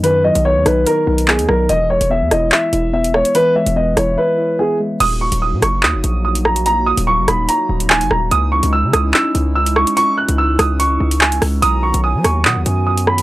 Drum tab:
CC |----------------|----------------|----------------|x---------------|
HH |x--x--x-x--x-x--|x--x--x---x--x-x|x--x--x---------|x--x--x---x--x-x|
CP |------------x---|--------x-------|----------------|--------x-------|
SD |------r-------r-|------r-------r-|------r---------|------r-------r-|

CC |----------------|----------------|----------------|----------------|
HH |x--x--x-x--x-x--|x--x--x---x--x-x|x--x--x-x--x-xo-|x--x--x---x--x-x|
CP |------------x---|--------x-------|------------x---|--------x-------|
SD |------r-------r-|------r-------r-|------r-------r-|------r-------r-|